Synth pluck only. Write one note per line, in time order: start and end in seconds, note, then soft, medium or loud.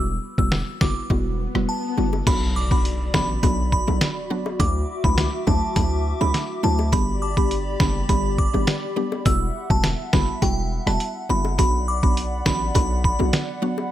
0.00 0.14 G3 medium
0.00 0.14 B3 medium
0.00 0.14 E4 medium
0.00 0.14 F#4 loud
0.38 0.78 G3 medium
0.38 0.78 B3 medium
0.38 0.78 E4 medium
0.38 0.78 F#4 medium
0.81 1.08 G3 medium
0.81 1.08 B3 medium
0.81 1.08 E4 medium
0.81 1.08 F#4 medium
1.10 1.51 G3 medium
1.10 1.51 B3 medium
1.10 1.51 E4 medium
1.10 1.51 F#4 loud
1.55 1.94 G3 medium
1.55 1.94 B3 medium
1.55 1.95 E4 medium
1.55 1.95 F#4 medium
1.98 2.25 G3 medium
1.98 2.25 B3 medium
1.98 2.25 E4 medium
1.98 2.25 F#4 medium
2.27 2.47 F#3 medium
2.27 2.47 B3 medium
2.27 2.47 D4 medium
2.27 2.47 F#4 loud
2.71 3.11 F#3 medium
2.71 3.11 B3 medium
2.71 3.11 D4 medium
2.71 3.11 F#4 medium
3.14 3.41 F#3 medium
3.14 3.41 B3 medium
3.14 3.41 D4 medium
3.14 3.41 F#4 medium
3.43 3.84 F#3 loud
3.43 3.84 B3 medium
3.43 3.84 D4 medium
3.43 3.84 F#4 loud
3.87 4.27 F#3 medium
3.87 4.27 B3 medium
3.87 4.27 D4 medium
3.87 4.27 F#4 medium
4.30 4.57 F#3 medium
4.30 4.58 B3 medium
4.30 4.58 D4 medium
4.30 4.58 F#4 medium
4.59 4.80 F#3 loud
4.59 4.80 A3 medium
4.59 4.80 D4 medium
4.59 4.80 E4 loud
5.04 5.44 F#3 medium
5.04 5.44 A3 medium
5.04 5.44 D4 medium
5.04 5.44 E4 medium
5.47 5.74 F#3 medium
5.47 5.74 A3 medium
5.47 5.74 D4 medium
5.47 5.74 E4 medium
5.76 6.17 F#3 loud
5.76 6.17 A3 medium
5.76 6.17 D4 medium
5.76 6.17 E4 loud
6.21 6.60 F#3 medium
6.21 6.60 A3 medium
6.21 6.60 D4 medium
6.21 6.61 E4 medium
6.63 6.90 F#3 medium
6.63 6.90 A3 medium
6.63 6.91 D4 medium
6.63 6.91 E4 medium
6.92 7.13 G3 loud
6.92 7.13 B3 medium
6.92 7.13 D4 medium
6.92 7.13 G4 loud
7.37 7.77 G3 medium
7.37 7.77 B3 medium
7.37 7.77 D4 medium
7.37 7.77 G4 medium
7.80 8.07 G3 medium
7.80 8.07 B3 medium
7.80 8.07 D4 medium
7.80 8.07 G4 medium
8.09 8.50 G3 loud
8.09 8.50 B3 medium
8.09 8.50 D4 medium
8.09 8.50 G4 loud
8.53 8.93 G3 medium
8.53 8.93 B3 medium
8.53 8.93 D4 medium
8.53 8.94 G4 medium
8.96 9.23 G3 medium
8.96 9.23 B3 medium
8.96 9.24 D4 medium
8.96 9.24 G4 medium
9.25 9.46 G3 medium
9.25 9.46 B3 medium
9.25 9.46 E4 medium
9.25 9.46 F#4 loud
9.70 10.10 G3 medium
9.70 10.10 B3 medium
9.70 10.10 E4 medium
9.70 10.10 F#4 medium
10.13 10.40 G3 medium
10.13 10.40 B3 medium
10.13 10.40 E4 medium
10.13 10.40 F#4 medium
10.42 10.83 G3 loud
10.42 10.83 B3 medium
10.42 10.83 E4 medium
10.42 10.83 F#4 loud
10.87 11.26 G3 medium
10.87 11.26 B3 medium
10.87 11.26 E4 medium
10.87 11.27 F#4 medium
11.29 11.56 G3 medium
11.29 11.57 B3 medium
11.29 11.57 E4 medium
11.29 11.57 F#4 medium
11.58 11.79 F#3 medium
11.58 11.79 B3 medium
11.58 11.79 D4 medium
11.58 11.79 F#4 loud
12.03 12.43 F#3 medium
12.03 12.43 B3 medium
12.03 12.43 D4 medium
12.03 12.43 F#4 medium
12.46 12.73 F#3 medium
12.46 12.73 B3 medium
12.46 12.73 D4 medium
12.46 12.73 F#4 medium
12.75 13.16 F#3 medium
12.75 13.16 B3 medium
12.75 13.16 D4 medium
12.75 13.16 F#4 loud
13.19 13.59 F#3 medium
13.19 13.59 B3 medium
13.19 13.59 D4 medium
13.19 13.59 F#4 medium
13.62 13.89 F#3 medium
13.62 13.89 B3 medium
13.62 13.90 D4 medium
13.62 13.90 F#4 medium